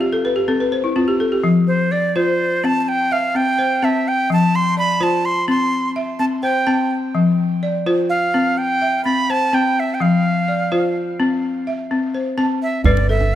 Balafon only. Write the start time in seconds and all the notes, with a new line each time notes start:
Already playing: F4
0.01 G4
0.13 A4
0.25 B4
0.36 G4
0.48 C4 A4
0.60 B4
0.72 C5
0.84 E4
0.96 C4 F4
1.08 G4
1.20 A4
1.32 G4
1.44 F3
1.92 D5
2.16 F4 C5
2.64 C4
3.11 E5
3.35 C4
3.59 C5
3.82 C4 A5
4.30 F3
4.77 D5
5.01 F4 C5
5.48 C4
5.96 E5
6.20 C4
6.43 C5
6.67 C4 A5
7.15 F3
7.63 D5
7.86 F4 C5
8.34 C4
8.81 E5
9.06 C4
9.30 C5
9.53 C4 A5
10.00 F3
10.48 D5
10.72 F4 C5
11.20 C4
11.67 E5
11.91 C4
12.15 C5
12.38 C4 A5
12.85 G3 B4
13.09 A4